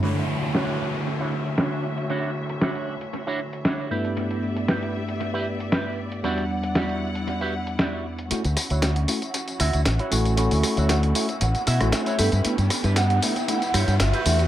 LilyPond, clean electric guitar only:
\new Staff \with { instrumentName = "Clean electric guitar" } { \time 4/4 \key d \major \tempo 4 = 116 <d' e' fis' cis''>8 r8 <d' e' fis' cis''>8 r8. <d' e' fis' cis''>16 r8 <d' e' fis' cis''>8 r8 | <d' e' fis' cis''>8 r8 <d' e' fis' cis''>8 r8. <d' e' fis' cis''>16 r8 <d' e' fis' cis''>8 <e' g' b'>8~ | <e' g' b'>8 r8 <e' g' b'>8 r8. <e' g' b'>16 r8 <e' g' b'>8 r8 | <e' fis' g' d''>8 r8 <e' fis' g' d''>8 r8. <e' fis' g' b'>16 r8 <e' fis' g' d''>8 r8 |
r8. <e' fis' cis''>16 r4. <e' fis' e''>8 r16 <e' fis' cis''>8. | r8. <e' fis' cis''>16 r4. <e' fis' e''>8 r16 <e' fis' cis''>16 <e' g' b'>8~ | <e' g' b'>16 r8 <e' g' b'>16 r4. <e' g' cis''>8 r16 <e' g' b'>8. | }